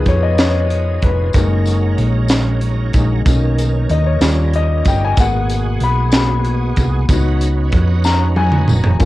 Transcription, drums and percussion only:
0.06 kick, closed hi-hat
0.38 snare, closed hi-hat
0.70 closed hi-hat
1.02 kick, closed hi-hat
1.33 kick, closed hi-hat, tambourine
1.65 closed hi-hat, tambourine
1.98 closed hi-hat
2.28 snare, closed hi-hat, tambourine
2.61 closed hi-hat
2.93 kick, closed hi-hat, tambourine
3.26 kick, closed hi-hat, tambourine
3.58 closed hi-hat, tambourine
3.89 closed hi-hat
4.21 snare, closed hi-hat, tambourine
4.53 closed hi-hat
4.85 kick, closed hi-hat, tambourine
5.17 kick, closed hi-hat, tambourine
5.50 closed hi-hat, tambourine
5.81 closed hi-hat
6.12 snare, closed hi-hat, tambourine
6.45 closed hi-hat
6.76 kick, closed hi-hat, tambourine
7.09 kick, closed hi-hat, tambourine
7.41 closed hi-hat, tambourine
7.72 kick, closed hi-hat
8.04 snare, tambourine
8.36 high tom
8.52 mid tom
8.68 mid tom, tambourine
8.84 floor tom
9.00 kick, closed hi-hat, tambourine

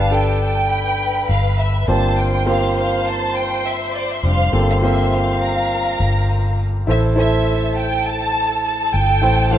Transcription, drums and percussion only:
0.12 tambourine
0.42 tambourine
0.71 tambourine
1.13 tambourine
1.30 tambourine
1.45 tambourine
1.59 tambourine
1.88 tambourine
2.17 tambourine
2.47 tambourine
2.77 tambourine
3.06 tambourine
3.49 tambourine
3.65 tambourine
3.95 tambourine
4.24 tambourine
4.53 tambourine
4.83 tambourine
4.97 tambourine
5.13 tambourine
5.41 tambourine
5.84 tambourine
6.00 tambourine
6.30 tambourine
6.44 tambourine
6.59 tambourine
6.88 tambourine
7.17 tambourine
7.47 tambourine
7.77 tambourine
7.92 tambourine
8.19 tambourine
8.35 tambourine
8.65 tambourine
8.79 tambourine
8.94 tambourine
9.22 tambourine
9.52 tambourine

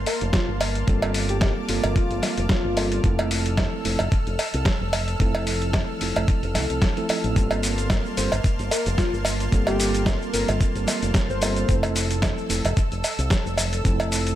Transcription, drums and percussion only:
0.06 open hi-hat, cowbell
0.21 closed hi-hat
0.33 kick, snare, closed hi-hat
0.61 open hi-hat, cowbell
0.75 closed hi-hat
0.87 kick, closed hi-hat
1.02 closed hi-hat, cowbell
1.14 open hi-hat
1.29 closed hi-hat
1.41 kick, snare, closed hi-hat, cowbell
1.69 open hi-hat
1.83 closed hi-hat, cowbell
1.96 kick, closed hi-hat
2.11 closed hi-hat
2.22 snare, open hi-hat, cowbell
2.38 closed hi-hat
2.49 kick, snare, closed hi-hat
2.77 open hi-hat, cowbell
2.92 closed hi-hat
3.04 kick, closed hi-hat
3.19 closed hi-hat, cowbell
3.31 open hi-hat
3.46 closed hi-hat
3.57 kick, snare, closed hi-hat, cowbell
3.85 open hi-hat
3.99 closed hi-hat, cowbell
4.12 kick, closed hi-hat
4.27 closed hi-hat
4.39 open hi-hat, cowbell
4.54 closed hi-hat
4.65 kick, snare, closed hi-hat
4.93 open hi-hat, cowbell
5.08 closed hi-hat
5.20 kick, closed hi-hat
5.35 closed hi-hat, cowbell
5.47 open hi-hat
5.62 closed hi-hat
5.73 kick, snare, closed hi-hat, cowbell
6.01 open hi-hat
6.16 closed hi-hat, cowbell
6.28 kick, closed hi-hat
6.43 closed hi-hat
6.55 snare, open hi-hat, cowbell
6.70 closed hi-hat
6.82 kick, snare, closed hi-hat
6.97 closed hi-hat
7.09 open hi-hat, cowbell
7.24 closed hi-hat
7.36 kick, closed hi-hat, cabasa
7.51 closed hi-hat, cowbell, cabasa
7.63 open hi-hat, cabasa
7.78 closed hi-hat, cabasa
7.90 kick, snare, closed hi-hat, cowbell, cabasa
8.05 cabasa
8.17 open hi-hat, cabasa
8.32 closed hi-hat, cowbell, cabasa
8.44 kick, closed hi-hat, cabasa
8.59 closed hi-hat, cabasa
8.71 open hi-hat, cowbell, cabasa
8.86 closed hi-hat, cabasa
8.98 kick, snare, closed hi-hat, cabasa
9.14 cabasa
9.25 open hi-hat, cowbell, cabasa
9.40 closed hi-hat, cabasa
9.52 kick, closed hi-hat, cabasa
9.67 closed hi-hat, cowbell, cabasa
9.80 open hi-hat, cabasa
9.95 closed hi-hat, cabasa
10.06 kick, snare, closed hi-hat, cowbell, cabasa
10.22 cabasa
10.34 open hi-hat, cabasa
10.48 closed hi-hat, cowbell, cabasa
10.61 kick, closed hi-hat, cabasa
10.76 closed hi-hat, cabasa
10.87 snare, open hi-hat, cowbell, cabasa
11.02 closed hi-hat, cabasa
11.14 kick, snare, closed hi-hat, cabasa
11.30 cabasa
11.42 open hi-hat, cowbell, cabasa
11.56 closed hi-hat, cabasa
11.69 kick, closed hi-hat, cabasa
11.83 closed hi-hat, cowbell, cabasa
11.96 open hi-hat, cabasa
12.11 closed hi-hat, cabasa
12.22 kick, snare, closed hi-hat, cowbell, cabasa
12.38 cabasa
12.50 open hi-hat, cabasa
12.65 closed hi-hat, cowbell, cabasa
12.77 kick, closed hi-hat, cabasa
12.92 closed hi-hat, cabasa
13.04 open hi-hat, cowbell, cabasa
13.19 closed hi-hat, cabasa
13.30 kick, snare, closed hi-hat, cabasa
13.46 cabasa
13.58 open hi-hat, cowbell, cabasa
13.73 closed hi-hat, cabasa
13.85 kick, closed hi-hat, cabasa
14.00 closed hi-hat, cowbell, cabasa
14.12 open hi-hat, cabasa
14.27 closed hi-hat, cabasa

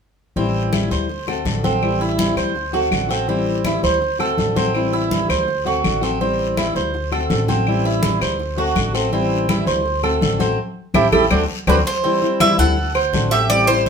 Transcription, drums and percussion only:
0.36 high conga, long guiro
0.54 high conga
0.73 high conga, short guiro, claves
0.91 high conga, short guiro
1.09 high conga, long guiro
1.27 high conga, claves
1.45 high conga, short guiro
1.64 high conga, short guiro
1.82 high conga, long guiro, claves
2.01 high conga
2.19 high conga, short guiro
2.37 short guiro, claves
2.55 high conga, long guiro
2.74 high conga
2.92 high conga, short guiro, claves
3.10 high conga, short guiro
3.28 high conga, long guiro
3.46 high conga
3.65 high conga, short guiro, claves
3.83 high conga, short guiro
4.01 high conga, long guiro
4.20 high conga, claves
4.38 high conga, short guiro
4.56 high conga, short guiro
4.74 high conga, long guiro, claves
4.93 high conga
5.11 high conga, short guiro
5.30 short guiro, claves
5.48 high conga, long guiro
5.66 high conga
5.84 high conga, short guiro, claves
6.03 high conga, short guiro
6.21 high conga, long guiro
6.39 high conga
6.57 high conga, short guiro, claves
6.75 high conga, short guiro
6.94 high conga, long guiro
7.12 high conga, claves
7.30 high conga, short guiro
7.48 high conga, short guiro
7.67 high conga, long guiro, claves
7.85 high conga
8.03 high conga, short guiro
8.21 short guiro, claves
8.39 high conga, long guiro
8.58 high conga
8.76 high conga, short guiro, claves
8.94 high conga, short guiro
9.12 high conga, long guiro
9.31 high conga
9.49 high conga, short guiro, claves
9.67 high conga, short guiro
9.86 high conga, long guiro
10.04 high conga, claves
10.22 high conga, short guiro
10.40 high conga, short guiro
10.94 high conga, long guiro, claves
11.12 high conga, long guiro, claves
11.31 high conga, long guiro, claves
11.67 high conga, long guiro, claves
12.04 high conga, long guiro
12.22 high conga
12.40 high conga, short guiro, claves
12.59 high conga, short guiro
12.77 high conga, long guiro
12.95 high conga, claves
13.13 high conga, short guiro
13.32 high conga, short guiro
13.50 high conga, long guiro, claves
13.68 high conga

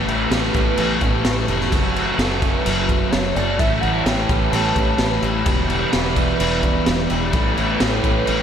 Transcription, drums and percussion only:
0.08 crash
0.31 snare, crash
0.43 snare
0.54 kick, crash
0.77 crash
1.01 kick, crash
1.25 snare, crash
1.48 crash
1.61 snare
1.72 kick, crash
1.96 crash
2.19 snare, crash
2.42 kick, crash
2.66 crash
2.89 kick, crash
3.13 snare, crash
3.36 crash
3.59 kick, crash
3.83 crash
4.06 snare, crash
4.29 kick, crash
4.53 crash
4.76 kick, crash
4.98 snare, crash
5.22 crash
5.46 kick, crash
5.70 crash
5.93 snare, crash
6.16 kick, crash
6.40 crash
6.63 kick, crash
6.86 snare, crash
7.10 crash
7.33 kick, crash
7.57 crash
7.80 snare, crash
8.04 kick, crash
8.27 crash

